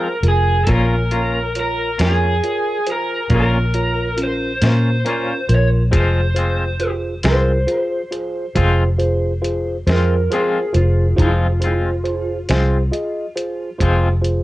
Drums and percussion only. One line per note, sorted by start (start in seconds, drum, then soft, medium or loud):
0.23 closed hi-hat soft
0.67 kick medium
0.67 closed hi-hat medium
1.11 closed hi-hat soft
1.55 closed hi-hat soft
1.99 snare medium
1.99 closed hi-hat medium
2.43 closed hi-hat soft
2.87 closed hi-hat medium
3.30 kick medium
3.30 closed hi-hat medium
3.74 closed hi-hat medium
4.18 closed hi-hat medium
4.62 snare medium
4.62 closed hi-hat medium
5.06 closed hi-hat medium
5.49 closed hi-hat medium
5.93 kick medium
5.93 closed hi-hat medium
6.36 closed hi-hat medium
6.80 closed hi-hat soft
7.23 snare medium
7.23 closed hi-hat medium
7.68 closed hi-hat soft
8.12 closed hi-hat medium
8.56 kick medium
8.56 closed hi-hat medium
9.00 closed hi-hat soft
9.44 closed hi-hat soft
9.87 snare medium
9.87 closed hi-hat medium
10.31 closed hi-hat soft
10.74 closed hi-hat soft
11.18 kick medium
11.18 closed hi-hat medium
11.62 closed hi-hat medium
12.05 closed hi-hat medium
12.49 snare medium
12.49 closed hi-hat medium
12.94 closed hi-hat medium
13.37 closed hi-hat medium
13.81 kick medium
13.81 closed hi-hat medium
14.25 closed hi-hat medium